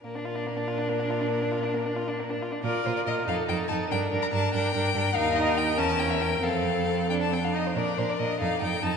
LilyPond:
<<
  \new Staff \with { instrumentName = "Violin" } { \time 6/8 \key bes \major \tempo 4. = 94 bes'2.~ | bes'2~ bes'8 r8 | d''8 c''16 d''16 ees''8 f''8 g''8 a''8 | g''8. bes''16 a''8 g''4. |
f''8 ees''16 f''16 g''8 a''8 g''16 e''16 g''8 | f''4. g''16 a''16 g''16 f''16 ees''16 c''16 | d''8 c''16 d''16 ees''8 f''8 g''8 a''8 | }
  \new Staff \with { instrumentName = "Violin" } { \time 6/8 \key bes \major bes16 d'16 f'16 d'16 bes16 d'16 f'16 d'16 bes16 d'16 f'16 d'16 | bes16 d'16 f'16 d'16 bes16 d'16 f'16 d'16 bes16 d'16 f'16 d'16 | bes'8 bes'8 bes'8 a'8 a'8 a'8 | bes'8 bes'8 bes'8 bes'8 bes'8 bes'8 |
bes'4. bes'4. | a'2~ a'8 r8 | bes'8 bes'8 bes'8 a'8 a'8 a'8 | }
  \new Staff \with { instrumentName = "Viola" } { \time 6/8 \key bes \major d'2.~ | d'2~ d'8 r8 | f'8 f'8 f'8 ees'8 ees'8 ees'8 | d'8 d'8 d'8 d'8 d'8 d'8 |
ees'4. cis'4. | c'4. d'8 c'16 d'16 ees'8 | d'8 d'8 d'8 ees'8 ees'8 ees'8 | }
  \new Staff \with { instrumentName = "Cello" } { \clef bass \time 6/8 \key bes \major bes,2.~ | bes,2~ bes,8 r8 | bes,8 bes,8 bes,8 f,8 f,8 f,8 | g,8 g,8 g,8 g,8 g,8 g,8 |
ees,4. e,4. | f,2~ f,8 r8 | bes,8 bes,8 bes,8 f,8 f,8 f,8 | }
>>